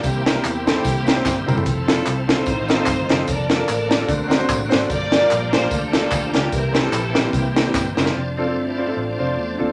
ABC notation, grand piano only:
X:1
M:4/4
L:1/16
Q:"Swing" 1/4=148
K:F
V:1 name="Grand piano"
z2 [CEGB] [CEGB] z2 [CEGA] [CEGA] z2 [CEGB] [CEGc] z2 [CEGB] [CEGA] | z2 [CEFA] [CEFA] z2 [CEFA] [CEFA] z2 [C_EFA] [CEFA] z2 [CEFG] [CEFA] | z2 [B,DFA] [B,DFB] z2 [B,DFG] [B,DFA] z2 [CD^FB] [CDFc] z2 [CDFc] [CDFA] | z2 [B,DFG] [B,DFB] z2 [B,DFG] [B,DFB] z2 [B,DFA] [B,DFG] z2 [B,DFG] [B,DFG] |
z2 [B,CEG] [B,CEA] z2 [B,CEG] [B,CEG] z2 [B,CEA] [B,CEG] z2 [B,CEG] [B,CEG] | z2 [CDFA] [CDFA] z2 [CDFc] [CDFA] z2 [CDFc] z3 [CDFA] z |]
V:2 name="Grand piano" clef=bass
C,6 z8 z2 | z8 A,,6 z2 | z8 D,6 z2 | G,,6 z8 z2 |
C,6 z8 z2 | z16 |]